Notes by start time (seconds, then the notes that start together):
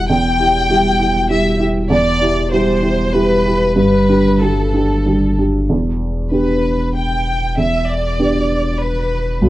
Already playing: E1 E2 G3 E4 G4
0.10 E2 G5
0.39 E4 G4
0.70 G3 E4 G4
1.00 E4 G4
1.29 G3 E4 G4 E5
1.60 E4 G4
1.90 E2 D5
2.21 E4 G4
2.52 G3 E4 G4 C5
2.82 E4 G4
3.13 G3 E4 G4 B4
3.45 E4 G4
3.76 G1 G2 B4
4.09 D4 G4
4.41 G3 D4 G4 A4
4.74 D4 G4
5.06 G3 D4 G4
5.38 D4 G4
5.69 E1 E2
6.31 B3 D4 G4 B4
6.97 G5
7.57 E2 E5
7.89 D5
8.19 B3 D4 G4
8.82 B4
9.41 B1